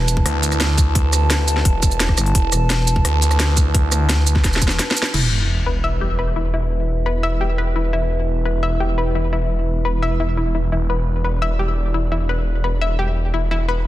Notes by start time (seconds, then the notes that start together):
Already playing: E1 E4 B4 A5
0.08 closed hi-hat, shaker
0.17 kick
0.26 D2, cross-stick, closed hi-hat
0.43 closed hi-hat, shaker
0.52 cross-stick, closed hi-hat, shaker
0.60 snare, closed hi-hat
0.78 kick, closed hi-hat, shaker
0.95 kick, closed hi-hat
1.13 cross-stick, closed hi-hat, shaker
1.30 snare, closed hi-hat
1.48 closed hi-hat, shaker
1.57 snare
1.65 E1, kick, closed hi-hat
1.83 kick, closed hi-hat, shaker
1.91 closed hi-hat, shaker
2.00 snare, closed hi-hat
2.09 kick, cross-stick
2.17 G1, cross-stick, closed hi-hat, shaker
2.26 closed hi-hat
2.35 E1, kick, closed hi-hat
2.52 E1, cross-stick, closed hi-hat, shaker
2.70 snare, closed hi-hat
2.87 closed hi-hat, shaker
2.96 kick
3.05 D2, cross-stick, closed hi-hat
3.22 closed hi-hat, shaker
3.31 cross-stick, closed hi-hat, shaker
3.40 snare, closed hi-hat
3.57 kick, closed hi-hat, shaker
3.74 kick, closed hi-hat
3.92 cross-stick, closed hi-hat, shaker
4.09 snare, closed hi-hat
4.27 closed hi-hat, shaker
4.35 kick, snare
4.44 E1, kick, snare, closed hi-hat
4.53 snare, closed hi-hat, shaker
4.62 kick, closed hi-hat, shaker
4.68 snare, closed hi-hat, shaker
4.79 snare, closed hi-hat
4.91 snare
4.97 closed hi-hat, shaker
5.02 snare, closed hi-hat, shaker
5.14 E1 E4 B4 E5, crash, sub drop
5.66 B4
5.84 E5
6.01 G4
6.19 B4
6.36 E4
6.54 E4
7.06 B4
7.23 E5
7.41 G4
7.58 B4
7.76 E4
7.93 E4
8.45 B4
8.63 E5
8.80 G4
8.98 B4
9.15 E4
9.33 E4
9.85 B4
10.02 E5
10.20 E4
10.37 E4
10.55 E4
10.72 E1 E4 D5
10.90 B4
11.24 B4
11.42 E5
11.59 G4
11.94 E4
12.12 E4
12.29 B4
12.64 B4
12.81 E5
12.99 G4
13.34 E4
13.51 E4
13.69 B4